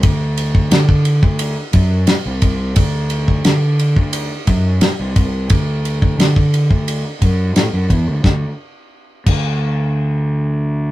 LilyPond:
<<
  \new Staff \with { instrumentName = "Fingered electric bass" } { \clef bass \time 4/4 \key d \mixolydian \tempo 4 = 88 d,4 d8. d,8 r16 fis,8 r16 c,8. | d,4 d8. d,8 r16 fis,8 r16 c,8. | d,4 d8. d,8 r16 fis,8 a,16 fis,16 e,16 d,16 | d,16 r4 r16 d,2~ d,8 | }
  \new DrumStaff \with { instrumentName = "Drums" } \drummode { \time 4/4 <bd cymr>8 cymr16 bd16 <cymr sn>16 bd16 cymr16 bd16 cymr8 <bd cymr>8 <cymr sn>8 <bd cymr>8 | <bd cymr>8 cymr16 bd16 <cymr sn>8 cymr16 bd16 cymr8 <bd cymr>8 <cymr sn>8 <bd cymr>8 | <bd cymr>8 cymr16 bd16 <cymr sn>16 bd16 cymr16 bd16 cymr8 <bd cymr>8 <cymr sn>8 <bd cymr>8 | <bd sn>4 r8 <cymc bd>8 r4 r4 | }
>>